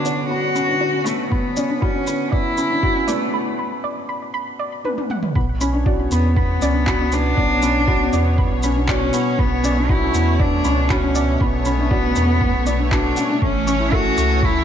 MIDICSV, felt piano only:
0, 0, Header, 1, 2, 480
1, 0, Start_track
1, 0, Key_signature, 2, "minor"
1, 0, Tempo, 504202
1, 1258, Time_signature, 4, 2, 24, 8
1, 13939, End_track
2, 0, Start_track
2, 0, Title_t, "Felt piano"
2, 0, Program_c, 0, 0
2, 0, Control_c, 0, 64, 127
2, 0, Note_on_c, 0, 59, 71
2, 0, Note_on_c, 0, 61, 68
2, 0, Note_on_c, 0, 62, 69
2, 0, Note_on_c, 0, 66, 83
2, 50, Note_off_c, 0, 59, 0
2, 50, Note_on_c, 0, 59, 71
2, 122, Note_off_c, 0, 59, 0
2, 287, Note_on_c, 0, 59, 76
2, 361, Note_off_c, 0, 59, 0
2, 526, Note_off_c, 0, 61, 0
2, 526, Note_on_c, 0, 61, 91
2, 646, Note_off_c, 0, 61, 0
2, 648, Note_off_c, 0, 62, 0
2, 648, Note_on_c, 0, 62, 70
2, 722, Note_off_c, 0, 62, 0
2, 769, Note_off_c, 0, 66, 0
2, 769, Note_on_c, 0, 66, 92
2, 887, Note_off_c, 0, 66, 0
2, 888, Note_on_c, 0, 61, 72
2, 1007, Note_off_c, 0, 61, 0
2, 1010, Note_on_c, 0, 59, 71
2, 1082, Note_off_c, 0, 59, 0
2, 1245, Note_on_c, 0, 59, 66
2, 1320, Note_off_c, 0, 59, 0
2, 1490, Note_on_c, 0, 61, 99
2, 1608, Note_off_c, 0, 61, 0
2, 1608, Note_on_c, 0, 62, 79
2, 1681, Note_off_c, 0, 62, 0
2, 1730, Note_on_c, 0, 66, 94
2, 1847, Note_on_c, 0, 61, 74
2, 1848, Note_off_c, 0, 66, 0
2, 1967, Note_off_c, 0, 61, 0
2, 1975, Note_on_c, 0, 59, 73
2, 2045, Note_off_c, 0, 59, 0
2, 2211, Note_on_c, 0, 59, 77
2, 2283, Note_off_c, 0, 59, 0
2, 2448, Note_on_c, 0, 61, 97
2, 2567, Note_off_c, 0, 61, 0
2, 2574, Note_on_c, 0, 62, 76
2, 2644, Note_off_c, 0, 62, 0
2, 2693, Note_on_c, 0, 66, 100
2, 2809, Note_off_c, 0, 66, 0
2, 2811, Note_on_c, 0, 61, 82
2, 2929, Note_off_c, 0, 61, 0
2, 2934, Note_on_c, 0, 59, 77
2, 3004, Note_off_c, 0, 59, 0
2, 5101, Note_on_c, 0, 59, 75
2, 5111, Control_c, 0, 64, 0
2, 5168, Note_off_c, 0, 59, 0
2, 5255, Control_c, 0, 64, 127
2, 5340, Note_on_c, 0, 61, 104
2, 5453, Note_off_c, 0, 61, 0
2, 5457, Note_on_c, 0, 62, 77
2, 5526, Note_off_c, 0, 62, 0
2, 5579, Note_on_c, 0, 66, 94
2, 5692, Note_off_c, 0, 66, 0
2, 5702, Note_on_c, 0, 61, 74
2, 5814, Note_off_c, 0, 61, 0
2, 5818, Note_on_c, 0, 59, 77
2, 5886, Note_off_c, 0, 59, 0
2, 6054, Note_on_c, 0, 59, 78
2, 6124, Note_off_c, 0, 59, 0
2, 6297, Note_on_c, 0, 61, 97
2, 6412, Note_off_c, 0, 61, 0
2, 6418, Note_on_c, 0, 62, 72
2, 6486, Note_off_c, 0, 62, 0
2, 6538, Note_on_c, 0, 66, 99
2, 6652, Note_off_c, 0, 66, 0
2, 6656, Note_on_c, 0, 61, 83
2, 6771, Note_off_c, 0, 61, 0
2, 6783, Note_on_c, 0, 59, 76
2, 6849, Note_off_c, 0, 59, 0
2, 7020, Note_on_c, 0, 59, 76
2, 7087, Note_off_c, 0, 59, 0
2, 7257, Note_on_c, 0, 61, 104
2, 7372, Note_off_c, 0, 61, 0
2, 7380, Note_on_c, 0, 62, 81
2, 7447, Note_off_c, 0, 62, 0
2, 7499, Note_on_c, 0, 66, 100
2, 7613, Note_off_c, 0, 66, 0
2, 7620, Note_on_c, 0, 61, 80
2, 7733, Note_off_c, 0, 61, 0
2, 7746, Note_on_c, 0, 59, 78
2, 7810, Note_off_c, 0, 59, 0
2, 7980, Note_on_c, 0, 59, 80
2, 8047, Note_off_c, 0, 59, 0
2, 8223, Note_on_c, 0, 61, 108
2, 8334, Note_off_c, 0, 61, 0
2, 8343, Note_on_c, 0, 62, 76
2, 8409, Note_off_c, 0, 62, 0
2, 8461, Note_on_c, 0, 66, 100
2, 8574, Note_off_c, 0, 66, 0
2, 8577, Note_on_c, 0, 61, 78
2, 8691, Note_off_c, 0, 61, 0
2, 8698, Note_on_c, 0, 59, 78
2, 8766, Note_off_c, 0, 59, 0
2, 8935, Note_on_c, 0, 59, 81
2, 9005, Note_off_c, 0, 59, 0
2, 9174, Note_on_c, 0, 61, 110
2, 9290, Note_off_c, 0, 61, 0
2, 9299, Note_on_c, 0, 62, 81
2, 9367, Note_off_c, 0, 62, 0
2, 9421, Note_on_c, 0, 66, 99
2, 9533, Note_off_c, 0, 66, 0
2, 9536, Note_on_c, 0, 61, 79
2, 9651, Note_off_c, 0, 61, 0
2, 9660, Note_on_c, 0, 59, 74
2, 9727, Note_off_c, 0, 59, 0
2, 9900, Note_on_c, 0, 59, 80
2, 9967, Note_off_c, 0, 59, 0
2, 10138, Note_on_c, 0, 61, 98
2, 10252, Note_off_c, 0, 61, 0
2, 10257, Note_on_c, 0, 62, 72
2, 10326, Note_off_c, 0, 62, 0
2, 10377, Note_on_c, 0, 66, 99
2, 10492, Note_off_c, 0, 66, 0
2, 10505, Note_on_c, 0, 61, 81
2, 10616, Note_off_c, 0, 61, 0
2, 10625, Note_on_c, 0, 59, 73
2, 10690, Note_off_c, 0, 59, 0
2, 10861, Note_on_c, 0, 59, 71
2, 10928, Note_off_c, 0, 59, 0
2, 11101, Note_on_c, 0, 61, 100
2, 11214, Note_off_c, 0, 61, 0
2, 11220, Note_on_c, 0, 62, 82
2, 11287, Note_off_c, 0, 62, 0
2, 11342, Note_on_c, 0, 66, 94
2, 11454, Note_off_c, 0, 66, 0
2, 11462, Note_on_c, 0, 61, 76
2, 11574, Note_off_c, 0, 61, 0
2, 11580, Note_on_c, 0, 59, 79
2, 11647, Note_off_c, 0, 59, 0
2, 11817, Note_on_c, 0, 59, 84
2, 11886, Note_off_c, 0, 59, 0
2, 12057, Note_on_c, 0, 59, 74
2, 12172, Note_off_c, 0, 59, 0
2, 12176, Note_on_c, 0, 62, 72
2, 12291, Note_off_c, 0, 62, 0
2, 12296, Note_on_c, 0, 66, 80
2, 12411, Note_off_c, 0, 66, 0
2, 12534, Note_on_c, 0, 61, 77
2, 12604, Note_off_c, 0, 61, 0
2, 12659, Note_on_c, 0, 62, 83
2, 12772, Note_off_c, 0, 62, 0
2, 12778, Note_on_c, 0, 57, 73
2, 12788, Control_c, 0, 64, 0
2, 12846, Note_off_c, 0, 57, 0
2, 12968, Control_c, 0, 64, 127
2, 13022, Note_on_c, 0, 61, 101
2, 13134, Note_off_c, 0, 61, 0
2, 13138, Note_on_c, 0, 64, 80
2, 13206, Note_off_c, 0, 64, 0
2, 13258, Note_on_c, 0, 69, 94
2, 13372, Note_off_c, 0, 69, 0
2, 13378, Note_on_c, 0, 61, 77
2, 13492, Note_off_c, 0, 61, 0
2, 13501, Note_on_c, 0, 57, 82
2, 13568, Note_off_c, 0, 57, 0
2, 13739, Note_on_c, 0, 57, 84
2, 13807, Note_off_c, 0, 57, 0
2, 13939, End_track
0, 0, End_of_file